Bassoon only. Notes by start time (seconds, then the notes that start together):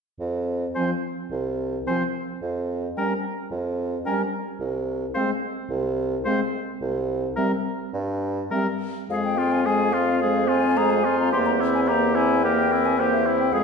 0.20 F2
1.31 C2
2.42 F2
3.51 F2
4.60 C2
5.70 C2
6.81 C2
7.93 G2
9.10 F2
11.33 E2
13.53 F2